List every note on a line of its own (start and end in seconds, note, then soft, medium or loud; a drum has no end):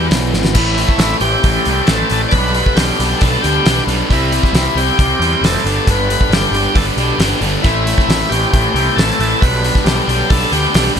0.00 0.56 E2 medium
0.00 0.54 B2 medium
0.00 0.53 E3 medium
0.00 0.54 E3 medium
0.00 0.54 G3 medium
0.00 0.55 B3 loud
0.00 0.55 E4 loud
0.10 0.31 B1 medium
0.10 snare loud
0.10 open hi-hat medium
0.33 0.53 G#1 medium
0.33 snare medium
0.45 snare medium
0.54 0.83 A1 medium
0.54 0.76 A2 medium
0.54 0.76 E3 medium
0.54 0.77 A3 loud
0.54 0.78 C4 medium
0.54 1.17 E4 medium
0.54 0.78 E4 loud
0.54 kick loud
0.54 crash loud
0.77 0.98 A2 medium
0.77 0.99 E3 medium
0.77 0.99 A3 medium
0.77 1.00 C4 medium
0.77 1.00 E4 medium
0.77 open hi-hat medium
0.89 kick medium
0.98 1.13 A1 medium
0.98 1.20 A2 medium
0.98 1.22 E3 medium
0.98 1.22 A3 medium
0.98 1.22 C4 medium
0.98 1.23 E4 medium
0.98 snare loud
0.98 open hi-hat medium
1.20 1.35 A1 medium
1.20 1.43 A2 medium
1.20 1.44 E3 medium
1.20 1.44 A3 medium
1.20 1.45 C4 medium
1.20 1.45 E4 medium
1.20 1.90 G4 loud
1.20 open hi-hat medium
1.44 1.58 A1 medium
1.44 1.65 A2 loud
1.44 1.65 E3 loud
1.44 1.66 A3 medium
1.44 1.66 C4 medium
1.44 1.67 E4 loud
1.44 kick loud
1.44 open hi-hat medium
1.65 1.80 C2 medium
1.65 1.87 A2 medium
1.65 1.88 E3 medium
1.65 1.88 A3 medium
1.65 1.89 C4 medium
1.65 1.89 E4 medium
1.65 open hi-hat medium
1.86 2.02 A1 medium
1.86 2.09 A2 medium
1.86 2.10 E3 medium
1.86 2.10 A3 loud
1.86 2.11 C4 medium
1.86 2.22 A4 loud
1.86 snare loud
1.86 open hi-hat medium
1.90 2.11 E4 medium
2.09 2.25 A1 medium
2.09 2.31 A2 medium
2.09 2.32 E3 medium
2.09 2.32 A3 medium
2.09 2.32 C4 medium
2.09 2.32 E4 medium
2.09 open hi-hat medium
2.29 2.54 B2 medium
2.29 2.78 B4 loud
2.29 2.34 D5 medium
2.29 kick loud
2.29 open hi-hat medium
2.33 2.61 B1 loud
2.33 2.54 G2 loud
2.33 2.55 D3 loud
2.33 2.55 G3 medium
2.33 2.55 B3 loud
2.33 2.55 D4 loud
2.54 2.76 G2 medium
2.54 2.75 B2 medium
2.54 2.77 D3 medium
2.54 2.77 G3 medium
2.54 2.77 B3 medium
2.54 2.78 D4 medium
2.54 open hi-hat medium
2.66 kick medium
2.76 2.91 B1 medium
2.76 2.98 G2 medium
2.76 2.98 B2 medium
2.76 3.00 D3 medium
2.76 2.99 G3 medium
2.76 2.99 B3 medium
2.76 3.00 D4 medium
2.76 3.22 G4 medium
2.76 snare loud
2.76 open hi-hat medium
2.99 3.13 B1 medium
2.99 3.20 G2 medium
2.99 3.20 B2 medium
2.99 3.20 D3 medium
2.99 3.21 G3 medium
2.99 3.21 B3 medium
2.99 3.22 D4 medium
2.99 open hi-hat medium
3.19 3.36 B1 medium
3.19 3.42 G2 loud
3.19 3.42 B2 medium
3.19 3.43 D3 loud
3.19 3.43 G3 loud
3.19 3.43 A4 medium
3.19 kick loud
3.19 open hi-hat medium
3.23 3.43 B3 medium
3.23 3.43 D4 medium
3.42 3.58 D2 medium
3.42 3.65 G2 medium
3.42 3.63 B2 medium
3.42 3.66 D3 loud
3.42 3.65 G3 medium
3.42 3.64 B3 medium
3.42 3.65 D4 medium
3.42 3.84 G4 loud
3.42 open hi-hat medium
3.65 3.80 B1 medium
3.65 3.88 G2 medium
3.65 3.86 B2 medium
3.65 3.88 D3 medium
3.65 3.87 G3 loud
3.65 3.87 B3 medium
3.65 3.87 D4 loud
3.65 snare loud
3.65 open hi-hat medium
3.78 snare soft
3.87 4.01 B1 medium
3.87 4.09 G2 medium
3.87 4.08 B2 medium
3.87 4.09 D3 medium
3.87 4.10 G3 medium
3.87 4.09 B3 medium
3.87 4.09 D4 medium
3.87 open hi-hat medium
4.10 4.38 C2 loud
4.10 4.30 C3 loud
4.10 4.32 G3 medium
4.10 4.32 C4 medium
4.10 4.33 E4 loud
4.10 4.80 E4 medium
4.10 kick loud
4.10 open hi-hat medium
4.32 4.53 C3 medium
4.32 4.55 G3 medium
4.32 4.55 C4 medium
4.32 4.55 E4 medium
4.32 open hi-hat medium
4.43 kick medium
4.43 snare soft
4.53 4.67 C2 medium
4.53 4.76 C3 medium
4.53 4.77 G3 medium
4.53 4.77 C4 medium
4.53 4.77 E4 loud
4.53 snare loud
4.53 open hi-hat medium
4.75 4.89 C2 medium
4.75 4.98 C3 medium
4.75 4.99 G3 medium
4.75 4.99 C4 medium
4.75 5.00 E4 medium
4.75 5.45 G4 loud
4.75 open hi-hat medium
4.99 5.13 C2 loud
4.99 5.19 C3 loud
4.99 5.20 G3 loud
4.99 5.21 C4 loud
4.99 5.21 E4 loud
4.99 kick loud
4.99 open hi-hat medium
5.20 5.34 E2 medium
5.20 5.41 C3 medium
5.20 5.42 G3 medium
5.20 5.43 C4 medium
5.20 5.43 E4 medium
5.20 open hi-hat medium
5.41 5.56 F1 medium
5.41 5.63 C3 medium
5.41 5.64 G3 medium
5.41 5.64 C4 medium
5.41 5.64 E4 medium
5.41 5.89 A4 medium
5.41 snare loud
5.41 open hi-hat medium
5.56 snare soft
5.64 5.79 G1 medium
5.64 5.87 G2 medium
5.64 5.87 D3 loud
5.64 5.88 G3 loud
5.64 5.88 B3 medium
5.64 5.89 D4 loud
5.64 open hi-hat medium
5.87 6.15 G1 medium
5.87 6.08 G2 medium
5.87 6.09 D3 loud
5.87 6.10 G3 medium
5.87 6.10 B3 loud
5.87 6.11 D4 loud
5.87 6.34 B4 loud
5.87 kick medium
5.87 open hi-hat medium
6.10 6.31 G2 medium
6.10 6.31 D3 medium
6.10 6.32 G3 medium
6.10 6.33 B3 medium
6.10 6.33 D4 medium
6.10 open hi-hat medium
6.21 kick medium
6.30 6.44 G1 medium
6.30 6.53 G2 medium
6.30 6.53 D3 medium
6.30 6.54 G3 medium
6.30 6.54 B3 medium
6.30 6.78 G4 medium
6.30 snare loud
6.30 open hi-hat medium
6.34 6.55 D4 medium
6.51 6.66 G1 medium
6.51 6.74 G2 medium
6.51 6.75 D3 medium
6.51 6.75 G3 medium
6.51 open hi-hat medium
6.55 6.76 B3 medium
6.55 6.76 D4 medium
6.75 6.89 G1 loud
6.75 6.96 G2 medium
6.75 6.97 D3 loud
6.75 6.97 G3 loud
6.75 6.98 B3 loud
6.75 6.99 D4 loud
6.75 6.86 A4 medium
6.75 kick loud
6.75 open hi-hat medium
6.97 7.11 B1 medium
6.97 7.19 G2 medium
6.97 7.19 D3 medium
6.97 7.20 G3 medium
6.97 7.21 B3 medium
6.97 7.21 D4 medium
6.97 7.40 G4 medium
6.97 open hi-hat medium
7.19 7.33 G1 medium
7.19 7.40 G2 medium
7.19 7.41 D3 medium
7.19 7.42 G3 medium
7.19 7.42 B3 medium
7.19 7.43 D4 medium
7.19 snare loud
7.19 open hi-hat medium
7.41 7.55 G1 medium
7.41 7.63 G2 medium
7.41 7.63 D3 medium
7.41 7.63 G3 medium
7.41 7.64 B3 medium
7.41 7.64 D4 medium
7.41 open hi-hat medium
7.63 7.92 A1 medium
7.63 7.84 A2 medium
7.63 7.85 E3 loud
7.63 7.86 A3 loud
7.63 7.86 C4 loud
7.63 8.32 E4 medium
7.63 7.87 E4 medium
7.63 kick loud
7.63 open hi-hat medium
7.85 8.07 A2 medium
7.85 8.08 E3 medium
7.85 8.09 A3 medium
7.85 8.09 C4 medium
7.85 8.10 E4 medium
7.85 open hi-hat medium
7.98 kick medium
7.98 snare soft
8.09 8.22 A1 medium
8.09 8.29 A2 medium
8.09 8.30 E3 medium
8.09 8.31 A3 medium
8.09 8.31 C4 medium
8.09 8.32 E4 loud
8.09 snare loud
8.09 open hi-hat medium
8.29 8.45 A1 medium
8.29 8.50 A2 medium
8.29 8.51 E3 medium
8.29 8.52 A3 medium
8.29 8.52 C4 medium
8.29 8.53 E4 loud
8.29 8.99 G4 loud
8.29 open hi-hat medium
8.52 8.67 A1 loud
8.52 8.72 A2 medium
8.52 8.73 E3 medium
8.52 8.74 A3 loud
8.52 8.75 C4 loud
8.52 8.75 E4 loud
8.52 kick loud
8.52 open hi-hat medium
8.74 8.88 C2 loud
8.74 8.95 A2 medium
8.74 8.96 E3 medium
8.74 8.97 A3 medium
8.74 8.97 C4 medium
8.74 8.98 E4 medium
8.74 open hi-hat medium
8.96 9.11 A1 loud
8.96 9.18 A2 medium
8.96 9.18 E3 medium
8.96 9.19 A3 medium
8.96 9.20 C4 medium
8.96 9.20 E4 medium
8.96 9.42 A4 loud
8.96 snare loud
8.96 open hi-hat medium
9.10 snare soft
9.19 9.33 A1 medium
9.19 9.40 A2 medium
9.19 9.40 E3 medium
9.19 9.41 A3 medium
9.19 9.41 C4 medium
9.19 9.41 E4 loud
9.19 open hi-hat medium
9.41 9.70 B1 medium
9.41 9.62 G2 medium
9.41 9.62 B2 medium
9.41 9.63 D3 loud
9.41 9.63 G3 medium
9.41 9.62 B3 loud
9.41 9.63 D4 loud
9.41 9.87 B4 loud
9.41 kick loud
9.41 open hi-hat medium
9.63 9.85 G2 medium
9.63 9.84 B2 medium
9.63 9.85 D3 medium
9.63 9.85 G3 medium
9.63 9.85 B3 medium
9.63 9.86 D4 medium
9.63 open hi-hat medium
9.75 kick medium
9.75 snare soft
9.84 9.99 B1 loud
9.84 10.06 G2 medium
9.84 10.05 B2 medium
9.84 10.07 D3 medium
9.84 10.06 G3 medium
9.84 10.07 B3 medium
9.84 10.08 D4 loud
9.84 10.31 G4 medium
9.84 snare loud
9.84 open hi-hat medium
10.07 10.22 B1 medium
10.07 10.29 G2 medium
10.07 10.28 B2 medium
10.07 10.30 D3 medium
10.07 10.29 G3 medium
10.07 10.29 B3 medium
10.07 10.30 D4 loud
10.07 open hi-hat medium
10.29 10.44 B1 loud
10.29 10.51 G2 medium
10.29 10.49 B2 loud
10.29 10.52 D3 loud
10.29 10.50 G3 medium
10.29 10.51 B3 loud
10.29 10.51 D4 loud
10.29 10.53 A4 medium
10.29 kick loud
10.29 open hi-hat medium
10.50 10.66 D2 medium
10.50 10.73 G2 medium
10.50 10.72 B2 medium
10.50 10.74 D3 loud
10.50 10.73 G3 medium
10.50 10.73 B3 medium
10.50 10.74 D4 medium
10.50 10.93 G4 medium
10.50 open hi-hat medium
10.73 10.89 B1 medium
10.73 10.95 G2 medium
10.73 10.95 B2 medium
10.73 10.96 D3 medium
10.73 10.96 G3 loud
10.73 10.96 B3 medium
10.73 10.97 D4 medium
10.73 snare loud
10.73 open hi-hat medium
10.86 snare soft
10.96 11.00 B1 medium
10.96 11.00 G2 medium
10.96 11.00 B2 medium